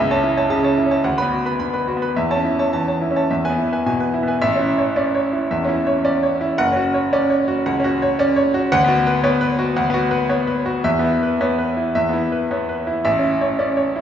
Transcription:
Already playing: C#2 E5
0.11 C#5 A5
0.15 C#4
0.23 E4
0.37 C#5 A5
0.50 C#3 A5
0.64 C#5 A5
0.78 E4
0.86 C#4
0.91 C#5 A5
1.04 D2 F#5
1.18 B4 B5
1.22 B3
1.32 F#4
1.46 B4 B5
1.59 D3 B5
1.73 B4 B5
1.88 F#4
1.97 B3
2.02 B4 B5
2.16 E2 E5
2.31 C#5 A5
2.36 C#4
2.45 E4
2.59 C#5 A5
2.73 E3 A5
2.88 C#5 A5
3.01 E4
3.11 C#4
3.16 C#5 A5
3.31 E2 E5
3.45 B4 G#5
3.50 B3
3.58 E4
3.73 B4 G#5
3.86 B2 G#5
4.00 B4 G#5
4.14 E4
4.23 B3
4.27 B4 G#5
4.42 A1 E5
4.55 C#4 E4
4.78 C#5
4.96 C#4 D5
5.15 C#5
5.33 E4
5.51 E2 E5
5.65 C#4
5.69 E4
5.87 C#5
6.05 C#4 D5
6.23 C#5
6.41 E4
6.58 F#1 F#5
6.72 C#4 F#4
6.94 C#5
7.13 C#4 D5
7.30 C#5
7.48 F#4
7.66 C#2 F#5
7.80 C#4
7.84 F#4
8.02 C#5
8.19 C#4 D5
8.36 C#5
8.54 F#4
8.72 D2 F#5
8.84 B3 F#4
9.07 B4
9.24 B3 C#5
9.41 B4
9.59 F#4
9.76 D2 F#5
9.90 B3
9.94 F#4
10.11 B4
10.29 B3 C#5
10.47 B4
10.66 F#4
10.84 E2 E5
10.99 B3
11.04 E4
11.23 B4
11.41 B3 C#5
11.59 B4
11.77 E4
11.95 E2 E5
12.09 B3
12.13 E4
12.32 B4
12.51 B3 C#5
12.69 B4
12.87 E4
13.05 A1 E5
13.19 C#4
13.24 E4
13.41 C#5
13.59 C#4 D5
13.77 C#5
13.96 E4

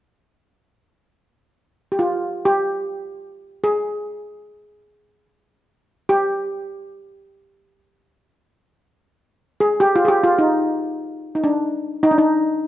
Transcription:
1.92 G4
1.99 F4
2.45 G4
3.64 G#4
6.09 G4
9.60 G#4
9.80 G4
9.96 F4
10.05 G4 G#4
10.24 F4
10.39 D#4
11.35 D#4
11.44 D4
12.03 D#4
12.11 D4
12.18 D#4

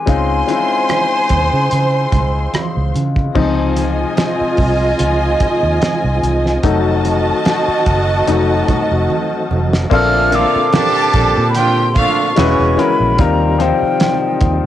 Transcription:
Already playing: G#5
0.06 C#2 G#3 C4 C#4 D#4 F4 C5 C6, kick, closed hi-hat
0.47 G#3 C4 C#4 D#4 E4, closed hi-hat, muted conga
0.57 F4
0.89 cross-stick, closed hi-hat, high conga
1.29 D#2, kick, closed hi-hat, low conga
1.53 C#3
1.71 C#3, closed hi-hat, muted conga
2.12 C#2, kick, closed hi-hat, muted conga, low conga
2.54 muted fingered electric bass stroke, cross-stick, closed hi-hat, high conga
2.75 C#2, high conga
2.94 C#3, closed hi-hat, high conga
3.16 kick, cross-stick
3.35 C#2 C3 F3 G#3 C4 D#4 F4 D#5 G#5, kick, crash
3.77 closed hi-hat, muted conga
4.17 snare, closed hi-hat, high conga
4.41 muted fingered electric bass stroke
4.57 C2, kick, open hi-hat, low conga
4.99 C#2, closed hi-hat, muted conga
5.40 kick, closed hi-hat, muted conga
5.63 D#2
5.82 snare, closed hi-hat, high conga
6.04 C2
6.22 C2, closed hi-hat, high conga
6.46 snare
6.63 F1 D#3 F#3 A3 D#4 F#4 D#5 F5 A5, kick, closed hi-hat
7.05 closed hi-hat, muted conga
7.45 snare, closed hi-hat, high conga
7.68 muted fingered electric bass stroke
7.86 F#1, kick, closed hi-hat
8.27 F1 F#3 A3 D#4, closed hi-hat, muted conga
8.68 kick, closed hi-hat, low conga
8.91 F1
9.10 high conga
9.51 F1, high conga
9.73 snare
9.90 A#1 A#2 D3 A3 A#3 C4 D4 F4 A4, kick, crash
9.94 F6
10.31 A#3 C4 D4 F4 A4 F5, closed hi-hat, muted conga
10.35 D6
10.56 muted fingered electric bass stroke
10.72 G3 C4 D4 G4 A4 A5, snare, closed hi-hat, high conga
11.13 A#1, kick, closed hi-hat, low conga
11.38 A#2
11.50 G4 B5
11.54 F3 C4 D4 F4 G5 C6, closed hi-hat, muted conga
11.92 F4 F5 C6, closed hi-hat
11.96 D3 F3 A3 D4 C#6, kick, muted conga
12.36 E1 C#3 E3 G#3 B3 C#4 E4 F#4 B4, snare, closed hi-hat, high conga
12.59 E1, high conga
12.76 G#3 C#4 E4 F#4 A#4 B5, closed hi-hat, high conga
13.00 A#1
13.18 D#2 C3 D#3 G3 C4 D#4 F4 A#4 A#5, kick, closed hi-hat
13.58 F3 C4 D#4 F4 C5 G5, closed hi-hat, muted conga
13.65 G3
13.82 muted fingered electric bass stroke
14.00 snare, closed hi-hat, high conga
14.41 D#2, kick, closed hi-hat

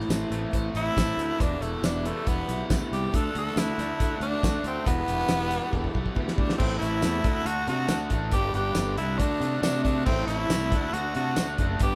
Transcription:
Already playing: A2 E3 A3 E4
0.00 snare
0.07 A1 E3 A3 C4 E4, snare, closed hi-hat, tambourine
0.12 A4 C5
0.29 A1 A2 E3 A3 C4 E4, closed hi-hat
0.51 A1 E3 A3 C4 E4 A4 C5, kick, closed hi-hat
0.72 A1 C4 E4, closed hi-hat
0.76 E4
0.95 A1 A2 E3 A3 C4 E4 A4 C5, kick, snare, closed hi-hat, tambourine
1.17 D2 A3, closed hi-hat
1.37 E1 E2 B2 E3 G3 B3 D4 E4 G4 B4, kick, closed hi-hat
1.41 E2 E3
1.60 E1 A3 E4, closed hi-hat
1.81 E1 E3 G3 B3 D4 E4 G4 B4, snare, closed hi-hat, tambourine
2.03 E2 B2 E3 G3 A3 B3 E4, closed hi-hat
2.26 E1 E3 G3 B3 E4 G4 B4, kick, closed hi-hat
2.48 B1 E3 G3 B3 E4, closed hi-hat
2.68 D2 E2 B2 E3 G3 B3 E4 G4 B4, kick, snare, closed hi-hat, tambourine
2.91 C2 G3 G4, closed hi-hat
3.12 D2 D3 A3 D4 F#4 A4, kick, closed hi-hat
3.34 D2 F#4 A4, closed hi-hat
3.47 snare
3.54 D2 D3 D4 F#4 A4, snare, closed hi-hat, tambourine
3.58 E4 F#4
3.78 D2 D3 A3 D4 F#4, snare, closed hi-hat
3.97 D2 D3 D4 F#4 A4, kick, closed hi-hat
4.02 D4 F#4
4.20 D2 A3 D4 F#4, closed hi-hat
4.41 D2 D3 A3 D4 F#4 A4, kick, snare, closed hi-hat, tambourine
4.45 F#4
4.64 D2 A3 C4, closed hi-hat
4.85 E1 E2 B2 E3 G3 B3 E4 G4 B4, kick, closed hi-hat
5.08 E1 G4, closed hi-hat
5.19 snare
5.28 E1 B3 E4 G4 B4, snare, closed hi-hat, tambourine
5.32 E4
5.50 E2 B2 E3 G3 B3 E4, closed hi-hat
5.69 E1 E3 E4 G4 A4, kick
5.73 G3 B3 E4 G4
5.84 kick
5.93 B1 E3 G3 B3 E4, kick
6.06 kick
6.15 D2 E2 B2 E3 G3 B3 E4 G4 B4, kick
6.28 snare
6.36 D2 G3 D4, kick
6.49 snare
6.58 A1 A2 E3 A3 C4 E4 A4, kick, crash
6.79 A1 A2 E3 A3 C4 E4, closed hi-hat
6.83 A4
7.00 E2 A2 E3 A3 C4 E4 A4, snare, closed hi-hat, tambourine
7.04 A3 E4 A4
7.24 D2 D3 A3 D4 F#4 A4, kick, closed hi-hat
7.45 D2 D3 A3 D4 F#4 A4, closed hi-hat
7.67 C3 D3 A3 D4 F#4 A4, closed hi-hat
7.87 D2 D3 A3 D4 F#4 A4, snare, closed hi-hat, tambourine
8.09 A1 D3 A3 D4 F#4 A4, kick, closed hi-hat
8.31 G1 G2 D3 G3 B3 D4 G4 B4, kick, closed hi-hat
8.54 G1 G2 D3 G3 B3 D4 G4 B4, closed hi-hat
8.73 G1 G2 G3 B3 D4 G4 A4 B4, snare, closed hi-hat, tambourine
8.77 D3 G3
8.96 C2 G2 D3 G3 B3 D4 E4 B4, closed hi-hat
9.17 D2 D3 A3 D4 F#4 A4, kick, closed hi-hat
9.39 C3 D3 A3 D4 F#4 A4, closed hi-hat
9.61 C3 D3 A3 D4 F#4 A4, snare, closed hi-hat, tambourine
9.84 D3 A3 D4 F#4 A4, kick, closed hi-hat
10.05 A1 A2 E3 A3 C4 E4 A4, kick, crash
10.27 A1 A2 E3 A3 C4 E4 A4, closed hi-hat
10.49 C2 A2 E3 A3 C4 E4 A4, snare, closed hi-hat, tambourine
10.53 E4 A4
10.71 D2 D3 A3 D4 F#4 A4, kick, closed hi-hat
10.93 D2 D3 A3 D4 F#4 A4, closed hi-hat
11.15 C3 D3 A3 D4 F#4 A4, closed hi-hat
11.36 D2 D3 A3 D4 F#4 A4 C5, snare, closed hi-hat, tambourine
11.58 F#1 D3 A3 D4 F#4 A4, kick, closed hi-hat
11.79 G1 G2 D3 G3 B3 D4 G4 B4, kick, closed hi-hat

